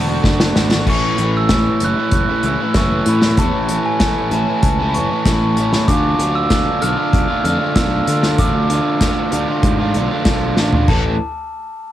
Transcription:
Already playing: fingered electric bass E1, overdriven electric guitar D3, glockenspiel A5
0.08 overdriven electric guitar A3 D4 F#4
0.23 fingered electric bass F#1, overdriven electric guitar D3 A3 D4 F#4, kick, snare
0.40 snare
0.55 fingered electric bass G#1, overdriven electric guitar D3 A3 D4 F#4, snare
0.70 overdriven electric guitar A3 D4 F#4, snare
0.86 fingered electric bass A1, overdriven electric guitar A2 E3 A3 C#4 E4, glockenspiel C#6, kick, crash
1.18 fingered electric bass A1, overdriven electric guitar E3 A3 C#4 E4, closed hi-hat
1.37 glockenspiel E6
1.49 overdriven electric guitar A2 E3 A3 C#4 E4, kick, snare, closed hi-hat
1.80 fingered electric bass F#1, overdriven electric guitar E3 A3 C#4 E4, closed hi-hat
1.85 glockenspiel F#6
1.97 overdriven electric guitar A3 C#4 E4
2.11 fingered electric bass F#1, glockenspiel F#6, kick, closed hi-hat
2.29 overdriven electric guitar A3 C#4 E4
2.43 fingered electric bass C#2, overdriven electric guitar E3 A3 C#4, glockenspiel E6, closed hi-hat
2.47 overdriven electric guitar E4
2.60 overdriven electric guitar A3 C#4 E4
2.74 fingered electric bass F#1, overdriven electric guitar A2 E3 A3 C#4, glockenspiel C#6, kick, snare, closed hi-hat
2.79 overdriven electric guitar E4
3.06 fingered electric bass A2, overdriven electric guitar E3 A3 C#4, glockenspiel B5, closed hi-hat
3.10 overdriven electric guitar E4
3.22 overdriven electric guitar A3 C#4 E4, snare
3.37 fingered electric bass E2, overdriven electric guitar A2 E3 A3 C#4 E4, glockenspiel A5, kick, closed hi-hat
3.53 fingered electric bass A1
3.69 overdriven electric guitar E3 A3 C#4 E4, closed hi-hat
3.86 glockenspiel G#5
4.00 overdriven electric guitar A2 E3 A3 C#4 E4, kick, snare, closed hi-hat
4.31 fingered electric bass A1, overdriven electric guitar E3 A3 C#4 E4, glockenspiel A5, closed hi-hat
4.48 overdriven electric guitar A3 C#4 E4
4.63 fingered electric bass C#2, glockenspiel A5, kick, closed hi-hat
4.79 overdriven electric guitar A3 C#4 E4
4.89 glockenspiel B5
4.94 fingered electric bass F#1, overdriven electric guitar E3 A3 C#4 E4, glockenspiel C#6, closed hi-hat
5.10 overdriven electric guitar A3 C#4 E4
5.25 fingered electric bass A1, overdriven electric guitar A2 E3 A3 C#4 E4, kick, snare, closed hi-hat
5.56 overdriven electric guitar E3 A3 C#4 E4, closed hi-hat
5.72 overdriven electric guitar A3 C#4 E4, snare
5.88 fingered electric bass D2, overdriven electric guitar D3 A3 D4 F4, glockenspiel D6, kick, closed hi-hat
6.19 fingered electric bass D2, overdriven electric guitar D3 A3 D4 F4, closed hi-hat
6.35 glockenspiel E6
6.50 overdriven electric guitar D3 A3 D4 F4, kick, snare, closed hi-hat
6.81 fingered electric bass B1, overdriven electric guitar D3 A3 D4 F4, glockenspiel F6, closed hi-hat
6.96 overdriven electric guitar A3 D4 F4
7.13 fingered electric bass B1, kick, closed hi-hat
7.28 overdriven electric guitar A3 D4 F4
7.44 fingered electric bass F2, overdriven electric guitar D3 A3 D4 F4, glockenspiel F6, closed hi-hat
7.59 overdriven electric guitar A3 D4 F4
7.75 fingered electric bass B1, overdriven electric guitar D3 A3 D4 F4, glockenspiel E6, kick, snare, closed hi-hat
8.07 overdriven electric guitar D3 A3 D4 F4, fingered electric bass D3, closed hi-hat
8.22 overdriven electric guitar A3 D4 F4, snare
8.38 fingered electric bass A1, overdriven electric guitar D3 A3 D4 F4, glockenspiel D6, kick, closed hi-hat
8.54 fingered electric bass D2
8.69 overdriven electric guitar D3 A3 D4 F4, closed hi-hat
9.01 overdriven electric guitar D3 A3 D4 F4, kick, snare, closed hi-hat
9.32 fingered electric bass D2, overdriven electric guitar D3 A3 D4 F4, closed hi-hat
9.48 overdriven electric guitar A3 D4 F4
9.63 fingered electric bass G#2, kick, closed hi-hat
9.79 overdriven electric guitar A3 D4 F4
9.94 fingered electric bass B1, overdriven electric guitar D3 A3 D4 F4, closed hi-hat
10.11 overdriven electric guitar A3 D4 F4
10.25 fingered electric bass B1, overdriven electric guitar D3 A3 D4 F4, kick, snare, closed hi-hat
10.57 fingered electric bass A1, overdriven electric guitar D3 A3 D4 F4, snare
10.73 overdriven electric guitar A3 D4 F4, floor tom
10.88 fingered electric bass A1, overdriven electric guitar A2 E3 A3 C#4 A4, glockenspiel A5, kick, crash

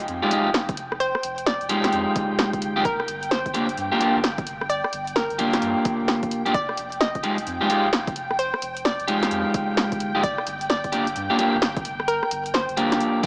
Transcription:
Already playing: string machine G5
0.08 sub bass F2, closed hi-hat
0.22 clean electric guitar G#3 D#4 F4 G4
0.31 clean electric guitar G#3 D#4 F4 G4, open hi-hat
0.46 sub bass F1
0.54 snare
0.69 kick, closed hi-hat
0.77 sub bass F1, open hi-hat
0.92 cross-stick
1.00 synth pluck C5, closed hi-hat
1.15 cross-stick
1.23 sub bass F1, open hi-hat
1.38 closed hi-hat
1.46 synth pluck D5, snare
1.61 sub bass F1, closed hi-hat
1.69 clean electric guitar G#3 D#4 F4 G4, open hi-hat
1.84 snare, closed hi-hat
1.93 sub bass F2, closed hi-hat
2.16 kick, open hi-hat
2.31 sub bass F1
2.39 snare
2.53 kick, closed hi-hat
2.62 sub bass G1, open hi-hat
2.76 clean electric guitar G#3 D#4 F4 G4
2.85 synth pluck A#4, kick, closed hi-hat
3.00 cross-stick
3.08 sub bass G1, open hi-hat
3.23 closed hi-hat
3.31 synth pluck C5, snare
3.46 sub bass G1, kick, closed hi-hat
3.54 clean electric guitar A#3 D4 F4 G4, cross-stick, open hi-hat
3.69 closed hi-hat
3.77 sub bass G2, closed hi-hat
3.92 clean electric guitar A#3 D4 F4 G4
4.00 clean electric guitar A#3 D4 F4 G4, open hi-hat
4.15 sub bass G1
4.24 snare
4.38 kick, closed hi-hat
4.47 sub bass G1, open hi-hat
4.61 cross-stick
4.70 synth pluck D5, closed hi-hat
4.84 cross-stick
4.93 sub bass G1, open hi-hat
5.07 closed hi-hat
5.16 synth pluck A#4, snare
5.30 sub bass G1, closed hi-hat
5.38 clean electric guitar A#3 D4 F4 G4, open hi-hat
5.53 snare, closed hi-hat
5.62 sub bass G2, closed hi-hat
5.85 kick, open hi-hat
6.00 sub bass G1
6.08 snare
6.23 kick, closed hi-hat
6.31 sub bass F1, open hi-hat
6.46 clean electric guitar A#3 D4 F4 G4, closed hi-hat
6.54 synth pluck D5, string machine G5, kick, closed hi-hat
6.69 cross-stick
6.77 sub bass F1, open hi-hat
6.92 closed hi-hat
7.01 synth pluck D#5, snare
7.15 sub bass F1, kick, closed hi-hat
7.23 clean electric guitar G#3 D#4 F4 G4, cross-stick, open hi-hat
7.38 closed hi-hat
7.47 sub bass F2, closed hi-hat
7.61 clean electric guitar G#3 D#4 F4 G4
7.69 clean electric guitar G#3 D#4 F4 G4, open hi-hat
7.84 sub bass F1
7.93 snare
8.07 kick, closed hi-hat
8.16 sub bass F1, open hi-hat
8.31 cross-stick
8.39 synth pluck C5, closed hi-hat
8.54 cross-stick
8.62 sub bass F1, open hi-hat
8.77 closed hi-hat
8.85 synth pluck D5, snare
9.00 sub bass F1, closed hi-hat
9.08 clean electric guitar G#3 D#4 F4 G4, open hi-hat
9.23 snare, closed hi-hat
9.31 sub bass F2, closed hi-hat
9.54 kick, open hi-hat
9.69 sub bass F1
9.77 snare
9.92 kick, closed hi-hat
10.00 sub bass G1, open hi-hat
10.15 clean electric guitar G#3 D#4 F4 G4
10.23 synth pluck D5, kick, closed hi-hat
10.38 cross-stick
10.47 sub bass G1, open hi-hat
10.61 closed hi-hat
10.70 synth pluck D5, snare
10.84 sub bass G1, kick, closed hi-hat
10.92 clean electric guitar A#3 D4 F4 G4, cross-stick, open hi-hat
11.07 closed hi-hat
11.16 sub bass G2, closed hi-hat
11.30 clean electric guitar A#3 D4 F4 G4
11.38 clean electric guitar A#3 D4 F4 G4, open hi-hat
11.54 sub bass G1
11.62 snare
11.77 kick, closed hi-hat
11.85 sub bass G1, open hi-hat
12.00 cross-stick
12.08 synth pluck A#4, closed hi-hat
12.23 cross-stick
12.31 sub bass G1, open hi-hat
12.46 closed hi-hat
12.54 synth pluck C5, snare
12.69 sub bass G1, closed hi-hat
12.77 clean electric guitar A#3 D4 F4 G4, open hi-hat
12.92 snare, closed hi-hat
13.01 sub bass D1, closed hi-hat
13.23 clean electric guitar G4

